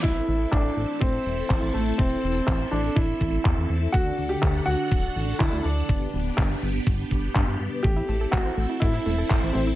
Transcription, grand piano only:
\new Staff \with { instrumentName = "Grand piano" } { \time 4/4 \key a \dorian \tempo 4 = 123 e'4 d'4 c'4. a8 | c'4. d'8 e'4. r8 | fis'8. g'8. fis'4. e'8 d'8~ | d'4. r2 r8 |
g'4 fis'4 e'4. c'8 | }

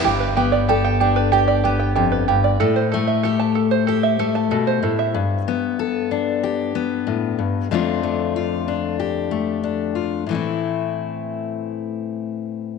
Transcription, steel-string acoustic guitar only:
\new Staff \with { instrumentName = "Steel-string acoustic guitar" } { \time 4/4 \key a \minor \tempo 4 = 94 << { r8 b8 a'8 d'8 g'8 b4. | r8 a8 g'4 g'8 a4. | r8 b8 a'8 d'8 g'8 b4. | <d a d' f'>8 a8 f'8 d'8 g'8 a8 d'8 f'8 |
<e a c' e'>1 | } \\ { g,2. f,8 g,8 | a,2. b,8 a,8 | g,2. a,8 g,8 | f,1 |
a,1 | } >> }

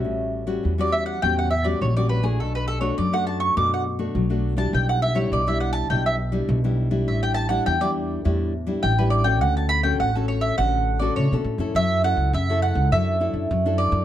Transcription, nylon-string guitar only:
\new Staff \with { instrumentName = "Nylon-string guitar" } { \time 4/4 \key d \major \tempo 4 = 103 << { <g cis' fis'>8. <g cis' fis'>8 <g cis' fis'>8. <g cis' fis'>8 r16 <g cis' fis'>8 <g cis' fis'>8 <a d' fis'>16~ | <a d' fis'>8. <a d' fis'>8 <a d' fis'>8. <a d' fis'>8 r16 <a d' fis'>8 <a d' fis'>8 <g d' e'>16~ | <g d' e'>8. <g d' e'>8 <g d' e'>8. <g d' e'>8 r16 <g d' e'>8 <g d' e'>8 <g d' e'>16~ | <g d' e'>8. <g d' e'>8 <g d' e'>8. <g d' e'>8 r16 <g d' e'>8 <g d' e'>8 <cis' fis' a'>16~ |
<cis' fis' a'>8. <cis' fis' a'>8 <cis' fis' a'>8. <cis' fis' a'>8. <cis' fis' a'>8 <cis' fis' a'>8 <cis' e' a'>16~ | <cis' e' a'>8 <cis' e' a'>8 r16 <cis' e' a'>8. <d' e' a'>8 <d' e' a'>8 r16 <d' e' a'>8. | } \\ { a,4 e4 a,4 e4 | b,4 fis4 b,4 fis4 | b,4 b,4 b,4 b,4 | a,4 e4 a,4 e4 |
d4 a,4 d4 a,4 | fis4 cis4 fis4 fis4 | } >> }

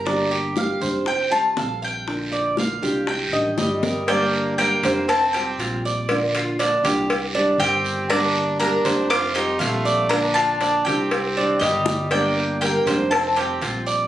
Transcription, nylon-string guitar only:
\new Staff \with { instrumentName = "Nylon-string guitar" } { \time 4/4 \key f \mixolydian \tempo 4 = 120 <d g bes d' g'>4 <g bes d' g'>8 <g bes d' g'>8 r8 <g c' f'>8 <f g c' f'>4 | <d bes d' f'>4 <d bes d' f'>8 <bes d' f'>8 r8 <ees g d' g'>8 <ees g g'>4 | <d g bes d' g'>4 <g bes d' g'>8 <g bes d' g'>8 r8 <g c' f'>8 <f g c' f'>4 | <d bes d' f'>4 <d bes d' f'>8 <bes d' f'>8 r8 <ees g d' g'>8 <ees g d' g'>4 |
<d g bes d' g'>4 <g bes d' g'>8 <g bes d' g'>8 r8 <g c' f'>8 <f g c' f'>4 | <d bes d' f'>4 <d bes d' f'>8 <bes d' f'>8 r8 <ees g d' g'>8 <ees g g'>4 | <d g bes d' g'>4 <g bes d' g'>8 <g bes d' g'>8 r8 <g c' f'>8 <f g c' f'>4 | }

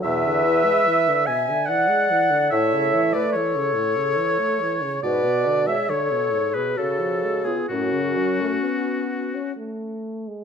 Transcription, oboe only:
\new Staff \with { instrumentName = "Oboe" } { \time 3/4 \key fis \minor \tempo 4 = 71 e''4. gis''8 fis''4 | e''8. d''16 cis''2 | d''8. e''16 cis''8. b'16 a'8. gis'16 | fis'2 r4 | }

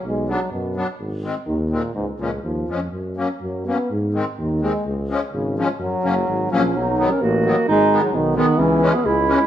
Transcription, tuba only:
\new Staff \with { instrumentName = "Tuba" } { \clef bass \time 2/4 \key fis \major \tempo 4 = 127 b,,4 fis,4 | gis,,4 dis,4 | cis,8 cis,8 dis,8 eis,8 | fis,4 fis,4 |
gis,4 dis,4 | cis,4 gis,,4 | fis,8 fis,,8 gis,,8 ais,,8 | \key b \major b,,4 a,,4 |
gis,,4 b,,4 | cis,4 cis,4 | }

